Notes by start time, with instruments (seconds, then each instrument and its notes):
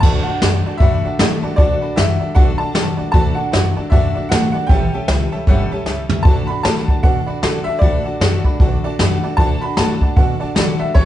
0.00 upright bass D2, steel-string acoustic guitar D3 A3 D4 F#4 A4, upright piano A5, kick, open hi-hat, crash
0.05 honky-tonk piano D5 F#5 A5
0.23 steel-string acoustic guitar A4, honky-tonk piano D5, upright piano F#5
0.27 steel-string acoustic guitar D4 F#4, honky-tonk piano F#5 A5, muted upright bass stroke
0.42 upright bass F#2, steel-string acoustic guitar A3 D4 F#4 A4, honky-tonk piano D5 F#5 A5, snare
0.65 steel-string acoustic guitar D4 F#4 A4, honky-tonk piano D5 F#5 A5, muted upright bass stroke
0.78 upright bass F#2, steel-string acoustic guitar D3 A3 D4, honky-tonk piano D5, upright piano E5, kick, open hi-hat
0.82 steel-string acoustic guitar F#4 A4, honky-tonk piano F#5 B5
1.03 steel-string acoustic guitar D4 F#4 A4, honky-tonk piano D5 F#5 A5, muted upright bass stroke
1.19 upright bass A2, steel-string acoustic guitar A3 D4 F#4 A4, honky-tonk piano D5 F#5 A5, snare
1.42 steel-string acoustic guitar D4 F#4 A4, honky-tonk piano D5 F#5 A5, muted upright bass stroke
1.56 upright bass D2, steel-string acoustic guitar D3 A3 D4 F#4 A4, upright piano D5, honky-tonk piano D5 F#5 A5, kick, open hi-hat
1.81 steel-string acoustic guitar D4 F#4 A4, honky-tonk piano D5 F#5 B5, muted upright bass stroke
1.96 upright bass F#2, steel-string acoustic guitar A3 D4 F#4 A4, honky-tonk piano D5 F#5 A5, upright piano E5, snare, open hi-hat
2.20 steel-string acoustic guitar D4 F#4 A4, honky-tonk piano D5 F#5 A5, muted upright bass stroke
2.35 upright bass B1, steel-string acoustic guitar D3 A3 D4 F#4 A4, honky-tonk piano D5 F#5 A5, upright piano F#5, kick, open hi-hat
2.58 steel-string acoustic guitar D4 F#4 A4, honky-tonk piano D5 F#5 A5, upright piano A5, muted upright bass stroke
2.73 upright bass F#2, steel-string acoustic guitar A3 D4 F#4 A4, honky-tonk piano D5 F#5 A5, snare, open hi-hat
2.97 upright bass A2, steel-string acoustic guitar D4 F#4 A4, honky-tonk piano D5 F#5 A5
3.12 upright bass D2, steel-string acoustic guitar D3 A3 D4 F#4 A4, honky-tonk piano D5 F#5 A5, upright piano A5, kick, open hi-hat
3.35 steel-string acoustic guitar F#4 A4, honky-tonk piano D5 F#5 A5, upright piano F#5
3.39 steel-string acoustic guitar D4
3.52 upright bass F#2, steel-string acoustic guitar A3 D4 F#4 A4, honky-tonk piano D5 F#5 A5, snare, open hi-hat
3.76 steel-string acoustic guitar D4 F#4 A4, honky-tonk piano D5 F#5 A5, muted upright bass stroke
3.90 upright bass F#2, steel-string acoustic guitar D3 A3 D4 F#4 A4, honky-tonk piano D5 F#5 A5, upright piano E5, kick, open hi-hat
4.15 steel-string acoustic guitar D4 F#4 A4, honky-tonk piano D5 F#5 A5, muted upright bass stroke
4.29 upright bass A2, steel-string acoustic guitar A3 D4 F#4 A4, honky-tonk piano D5 F#5 A5, upright piano F#5, snare, open hi-hat
4.52 steel-string acoustic guitar F#4 A4, honky-tonk piano D5 F#5 A5, upright piano F#5, muted upright bass stroke
4.57 steel-string acoustic guitar D4
4.67 upright bass A1, steel-string acoustic guitar A2 E3 G3, honky-tonk piano C#5 E5 A5, upright piano G5, kick, open hi-hat
4.71 steel-string acoustic guitar C#4 G4 A4
4.93 steel-string acoustic guitar G3 C#4 G4 A4, honky-tonk piano C#5 E5 G5, muted upright bass stroke
5.08 upright bass C#2, steel-string acoustic guitar G3 C#4 G4 A4, honky-tonk piano C#5 E5 A5, snare, open hi-hat
5.32 steel-string acoustic guitar G3 C#4 G4 A4, honky-tonk piano C#5 E5 A5, muted upright bass stroke
5.47 upright bass G1, steel-string acoustic guitar A2 E3 G3 C#4 G4 A4, honky-tonk piano C#5 E5 F#5, kick, open hi-hat
5.71 steel-string acoustic guitar G3 C#4 G4 A4, honky-tonk piano C#5 E5 A5, muted upright bass stroke
5.86 upright bass C#2, steel-string acoustic guitar G3 C#4 G4 A4, honky-tonk piano C#5 E5 A5, snare
6.09 upright bass C#2, steel-string acoustic guitar G3 C#4 G4 A4, honky-tonk piano C#5 E5 A5, floor tom
6.23 upright bass D2, steel-string acoustic guitar D3 A3, honky-tonk piano D5 F#5, upright piano A5, kick, open hi-hat
6.27 steel-string acoustic guitar D4 F#4 A4, honky-tonk piano A5
6.47 steel-string acoustic guitar F#4 A4, honky-tonk piano D5 F#5 A5, upright piano B5
6.51 steel-string acoustic guitar D4
6.63 upright bass A2, steel-string acoustic guitar D3 A3 D4 F#4 A4, honky-tonk piano D5 F#5 B5, upright piano A5, snare
6.88 steel-string acoustic guitar D4 F#4 A4, honky-tonk piano D5 F#5 A5, kick
7.03 upright bass B2, steel-string acoustic guitar A3 D4 F#4 A4, honky-tonk piano D5 F#5 A5, upright piano F#5, kick, open hi-hat
7.27 steel-string acoustic guitar D4 F#4 A4, honky-tonk piano D5 F#5 B5, muted upright bass stroke
7.42 steel-string acoustic guitar D3 A3 D4 F#4 A4, upright bass D3, honky-tonk piano D5 F#5 A5, snare, open hi-hat
7.64 steel-string acoustic guitar A4, honky-tonk piano D5 F#5, upright piano E5, muted upright bass stroke
7.68 steel-string acoustic guitar D4 F#4, honky-tonk piano A5
7.79 upright bass D2, steel-string acoustic guitar D3 A3 D4, upright piano D5, honky-tonk piano D5 F#5 B5, kick, open hi-hat
7.83 steel-string acoustic guitar F#4 A4
8.04 steel-string acoustic guitar D4 F#4 A4, honky-tonk piano D5 F#5 A5, muted upright bass stroke
8.20 upright bass F#2, steel-string acoustic guitar D3 A3 D4 F#4 A4, honky-tonk piano D5 F#5 A5, snare, open hi-hat
8.44 steel-string acoustic guitar D4 F#4 A4, honky-tonk piano D5 F#5 B5, muted upright bass stroke, kick
8.60 upright bass B1, steel-string acoustic guitar A3 D4 F#4 A4, honky-tonk piano D5 F#5 A5, kick, open hi-hat
8.84 steel-string acoustic guitar D4 F#4 A4, honky-tonk piano D5 F#5 A5, muted upright bass stroke
8.99 upright bass F#2, steel-string acoustic guitar D3 A3 D4 F#4 A4, honky-tonk piano D5 F#5 A5, snare
9.23 steel-string acoustic guitar D4 F#4 A4, honky-tonk piano D5 F#5 A5, muted upright bass stroke
9.37 upright bass D2, steel-string acoustic guitar D3 A3 D4 F#4 A4, honky-tonk piano D5 F#5 A5, upright piano A5, kick, open hi-hat
9.61 steel-string acoustic guitar D4 F#4 A4, honky-tonk piano D5 F#5 A5, upright piano B5
9.77 upright bass A2, steel-string acoustic guitar D3 A3 D4 F#4 A4, honky-tonk piano D5 F#5, upright piano A5, snare, open hi-hat
10.01 steel-string acoustic guitar D4 F#4 A4, honky-tonk piano D5 F#5 A5, muted upright bass stroke, kick
10.16 upright bass B2, steel-string acoustic guitar A3 D4 F#4 A4, honky-tonk piano D5 F#5 A5, upright piano F#5, kick, open hi-hat
10.40 steel-string acoustic guitar D4 F#4 A4, honky-tonk piano D5 F#5 A5, muted upright bass stroke
10.55 steel-string acoustic guitar D3 A3 D4 F#4 A4, upright bass D3, honky-tonk piano D5 F#5 A5, snare, open hi-hat
10.79 steel-string acoustic guitar D4 F#4 A4, honky-tonk piano D5 F#5 A5, upright piano E5, muted upright bass stroke
10.94 upright bass A1, steel-string acoustic guitar A2 E3 G3 C#4 G4 A4, honky-tonk piano C#5 E5 A5, upright piano C#5, kick, open hi-hat